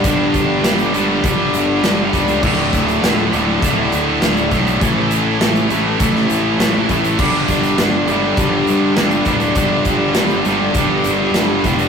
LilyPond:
<<
  \new Staff \with { instrumentName = "Distorted electric guitar" } { \time 4/4 \key g \lydian \tempo 4 = 101 <g, d g b d' g'>2 <g, d g b d' g'>2 | <d, a, d a e'>2 <d, a, d a e'>2 | <a, e a cis' e' a'>2 <a, e a cis' e' a'>2 | <g, d g b d' g'>2 <g, d g b d' g'>2 |
<g, d g b d' g'>2 <g, d g b d' g'>2 | }
  \new Staff \with { instrumentName = "Distorted electric guitar" } { \clef bass \time 4/4 \key g \lydian <g, d g>4 <g, d g>8 <g, d g>8 <g, d g>4 <g, d g>8 <g, d g>8 | <d, a, d>4 <d, a, d>8 <d, a, d>8 <d, a, d>4 <d, a, d>8 <d, a, d>8 | <a, e a>4 <a, e a>8 <a, e a>8 <a, e a>4 <a, e a>8 <a, e a>8 | <g, d g>4 <g, d g>8 <g, d g>8 <g, d g>4 <g, d g>8 <g, d g>8 |
<g, d g>4 <g, d g>8 <g, d g>8 <g, d g>4 <g, d g>8 <g, d g>8 | }
  \new Staff \with { instrumentName = "Distorted electric guitar" } { \clef bass \time 4/4 \key g \lydian <g, d g>4 <g, d g>8 <g, d g>8 <g, d g>4 <g, d g>8 <g, d g>8 | <d, a, d>4 <d, a, d>8 <d, a, d>8 <d, a, d>4 <d, a, d>8 <d, a, d>8 | <a, e a>4 <a, e a>8 <a, e a>8 <a, e a>4 <a, e a>8 <a, e a>8 | <g, d g>4 <g, d g>8 <g, d g>8 <g, d g>4 <g, d g>8 <g, d g>8 |
<g, d g>4 <g, d g>8 <g, d g>8 <g, d g>4 <g, d g>8 <g, d g>8 | }
  \new Staff \with { instrumentName = "Fingered electric bass" } { \clef bass \time 4/4 \key g \lydian g,,4 g,,8 g,,8 g,,8 g,,8 g,,8 cis,8 | d,,8 d,,8 d,,8 d,,8 d,,8 d,8 d,,8 b,,8 | a,,4 a,,8 a,,8 a,,8 a,,8 a,,8 a,,8 | g,,8 g,,8 g,,8 g,,8 g,,8 g,8 g,,8 d,,8 |
g,,4 g,,8 g,,8 g,,8 g,,8 g,,8 e,,8 | }
  \new DrumStaff \with { instrumentName = "Drums" } \drummode { \time 4/4 <hh bd>8 <hh bd>8 <hh sn>16 hh16 hh8 <hh bd>8 hh8 <hh sn>8 <hh bd>16 hh16 | <cymc bd>8 <hh bd>16 hh16 <hh sn>8 hh8 <hh bd>8 hh8 <hh sn>16 hh16 <hh bd>16 hh16 | <hh bd>8 hh8 <hh sn>16 hh16 hh8 <hh bd>16 sn16 hh8 <hh sn>8 <hh bd>16 hh16 | <cymc bd>8 <hh bd>16 hh16 <hh sn>8 hh8 <hh bd>8 hh8 <hh sn>16 hh16 <hh bd>16 hh16 |
<hh bd>8 <hh bd>8 <hh sn>16 hh16 hh8 <hh bd>8 hh8 <hh sn>8 <hh bd>16 hh16 | }
>>